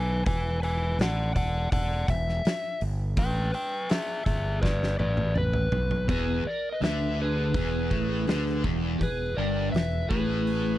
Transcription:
Already playing: B1 B4 G#5
0.26 E1 B4 G#5, kick, open hi-hat
0.63 B4 G#5, open hi-hat
0.99 A1 D5 F#5, snare, open hi-hat
1.36 E1 D5 F#5, kick, open hi-hat
1.72 E1 D5 F#5, kick, open hi-hat
2.08 E1 E5, kick, open hi-hat
2.29 snare
2.45 muted fingered electric bass stroke, snare, open hi-hat
2.81 G1, open hi-hat
3.17 A1 B4 G5, kick, open hi-hat
3.54 B4 G5, open hi-hat
3.90 G#4 E5, snare, open hi-hat
4.26 G1 G#4 E5, kick, open hi-hat
4.61 B4 D5, kick, snare
4.83 snare
4.99 A1 B4 D5, high tom
5.17 high tom
5.36 B4, mid tom
5.53 mid tom
5.72 B1, floor tom
5.91 floor tom
6.08 E1 E2 G#4 B4, kick, open hi-hat
6.45 D5, muted fingered electric bass stroke, muted overdriven electric guitar stroke
6.50 A#4
6.72 B4 D#5
6.82 D2 D3 B4 E5, snare, open hi-hat
7.22 G#4 B4
7.54 E1 E2, kick, open hi-hat
7.91 A1 A2, kick
8.27 D2 D3, snare, open hi-hat
8.63 E1 E2, kick
8.99 E1 E2 G#4, kick, open hi-hat
9.03 B4
9.35 G1 G2 A#4 D5
9.70 E1 B4 E5
9.74 E2, snare, open hi-hat
10.08 A1 A2 G#4 B4, kick
10.47 open hi-hat

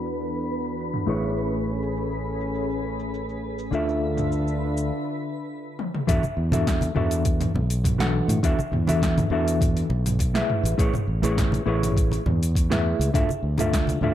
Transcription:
Already playing: E2 E3 B3 D4 F#4 A4 B4 E5 B5
0.06 cabasa
0.20 cabasa
0.36 cabasa
0.65 cabasa
0.79 cabasa
0.94 mid tom, cabasa
1.06 A1 A3 C#4 E4 G#4 B4 C#5
1.23 cabasa
1.38 cabasa
1.53 cabasa
1.82 cabasa
1.96 cabasa
2.11 cabasa
2.41 cabasa
2.55 cabasa
2.70 cabasa
2.99 cabasa
3.14 cabasa
3.29 cabasa
3.59 cabasa
3.71 D2 D3 D4 F4 A4 E5, cabasa
3.89 cabasa
4.17 mid tom, cabasa
4.32 cabasa
4.48 cabasa
4.77 cabasa
5.79 high tom
5.95 mid tom
6.07 E2 E3 D4 F#4 A4 E5, kick, mid tom, open hi-hat, cabasa
6.23 high conga, cabasa
6.37 E2
6.52 E3 D4 F#4 A4 E5, mid tom, open hi-hat, muted conga, high conga, cabasa
6.67 kick, snare, open hi-hat, cabasa
6.81 open hi-hat, high conga, cabasa
6.95 E2 E3 D4 F#4 A4 E5, mid tom
7.11 open hi-hat, cabasa
7.25 kick, open hi-hat, cabasa
7.41 mid tom, open hi-hat, muted conga, cabasa
7.54 B1, low conga
7.70 open hi-hat, cabasa
7.84 kick, mid tom, open hi-hat, cabasa
7.98 E3 D4 F#4 A4 F#5, snare, open hi-hat, cabasa
8.28 A2, mid tom, open hi-hat, cabasa
8.43 E2 E3 D4 F#4 A4 E5, kick, open hi-hat, cabasa
8.59 high conga, cabasa
8.72 E2, mid tom
8.87 E3 D4 F#4 A4 E5, open hi-hat, muted conga, high conga, cabasa
9.02 kick, snare, open hi-hat, cabasa
9.18 mid tom, open hi-hat, high conga, cabasa
9.30 E2 E3 D4 F#4 A4 E5
9.48 open hi-hat, cabasa
9.61 kick, mid tom, open hi-hat, cabasa
9.77 open hi-hat, cabasa
9.90 B1, muted conga
10.06 mid tom, open hi-hat, cabasa
10.19 kick, open hi-hat, muted conga, cabasa
10.34 A3 E4 G#4 B4 E5, snare, open hi-hat, cabasa
10.50 mid tom
10.63 A1, open hi-hat, cabasa
10.78 A1 A3 E4 G#4 B4 C#5, kick, open hi-hat, cabasa
10.94 mid tom, high conga, cabasa
11.08 A1
11.22 A3 E4 G#4 B4 C#5, open hi-hat, muted conga, high conga, cabasa
11.38 kick, snare, mid tom, open hi-hat, cabasa
11.52 open hi-hat, high conga, cabasa
11.66 A1 A3 E4 G#4 B4 C#5
11.83 mid tom, open hi-hat, cabasa
11.97 kick, open hi-hat, cabasa
12.12 open hi-hat, muted conga, cabasa
12.26 E2, mid tom, low conga
12.43 open hi-hat, cabasa
12.55 kick, open hi-hat, cabasa
12.70 A3 E4 G#4 B4 E5, snare, mid tom, open hi-hat, cabasa
12.99 C#2, open hi-hat, cabasa
13.13 D2 D3 D4 F4 A4 E5, kick, mid tom, open hi-hat, cabasa
13.29 high conga, cabasa
13.43 D2
13.58 D3 D4 F4 A4 E5, mid tom, open hi-hat, muted conga, high conga, cabasa
13.73 kick, snare, open hi-hat, cabasa
13.87 open hi-hat, high conga, cabasa
14.01 D2 D3 D4 F4 A4 E5, mid tom

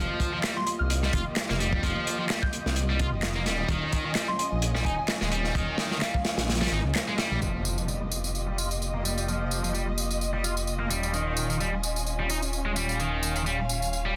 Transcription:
Already playing: F3 A#3 F4 G4 D#5
0.20 kick, closed hi-hat
0.33 F3
0.44 G3, snare, clap, closed hi-hat
0.57 C6
0.66 C6, closed hi-hat
0.79 C2 F6
0.90 closed hi-hat
1.03 G3, snare
1.13 F1 F4, kick, closed hi-hat
1.36 snare, clap, closed hi-hat
1.49 F1 A#3, snare
1.60 G3, closed hi-hat
1.73 kick
1.83 F1 F3, kick, closed hi-hat
2.07 closed hi-hat
2.19 F3
2.29 G3, snare, clap, closed hi-hat
2.42 G6, kick
2.53 closed hi-hat
2.66 C2, snare
2.76 closed hi-hat
2.90 G3
2.99 F4, kick, closed hi-hat
3.12 F1
3.23 snare, clap, closed hi-hat
3.36 A#3
3.46 D#1 G3 C#4 G#5, snare, closed hi-hat
3.69 D#1 D#3, kick, closed hi-hat
3.92 kick, closed hi-hat
4.05 D#3
4.15 G3, snare, clap, closed hi-hat
4.28 C6
4.39 C6, closed hi-hat
4.52 A#1
4.62 closed hi-hat
4.75 G3, snare
4.85 D#1 D#4 G#5, kick, closed hi-hat
4.98 G#5
5.08 snare, clap, closed hi-hat
5.21 D#1 G#3, snare
5.32 G3, closed hi-hat
5.44 snare
5.55 D#1 D#3, kick, closed hi-hat
5.78 snare, closed hi-hat
5.91 D#3, snare
6.01 G3 F5, snare, clap, closed hi-hat
6.14 kick
6.25 snare, closed hi-hat
6.37 A#1, snare, closed hi-hat
6.49 snare, closed hi-hat
6.55 snare, closed hi-hat
6.61 G3, snare, closed hi-hat
6.67 snare, closed hi-hat
6.72 G#1 D#4
6.84 C#2
6.95 snare, clap, closed hi-hat
7.08 G#3
7.18 G3, snare, closed hi-hat
7.31 A#1
7.41 F3 A#3 F4 G4 D#5, tambourine, impact
7.65 tambourine
7.78 F3, tambourine
7.88 G3, tambourine
8.11 tambourine
8.24 tambourine
8.35 tambourine
8.47 G3
8.58 F4, tambourine
8.71 tambourine
8.82 tambourine
8.94 A#3
9.04 G3, tambourine
9.18 tambourine
9.28 F3, tambourine
9.51 tambourine
9.64 F3, tambourine
9.74 G3, tambourine
9.98 tambourine
10.11 tambourine
10.21 tambourine
10.33 G3
10.44 F4, tambourine
10.57 tambourine
10.67 tambourine
10.79 A#3
10.90 D#1 G3 C#4 G#5, tambourine
11.03 tambourine
11.14 D#3, tambourine
11.37 tambourine
11.50 D#3, tambourine
11.60 G3, tambourine
11.83 tambourine
11.96 tambourine
12.06 tambourine
12.19 G3
12.29 D#4, tambourine
12.42 tambourine
12.53 tambourine
12.66 G#3
12.76 G3 F5, tambourine
12.89 tambourine
13.00 D#3, tambourine
13.23 tambourine
13.36 D#3, tambourine
13.46 G3, tambourine
13.69 tambourine
13.82 tambourine
13.93 tambourine
14.06 G3

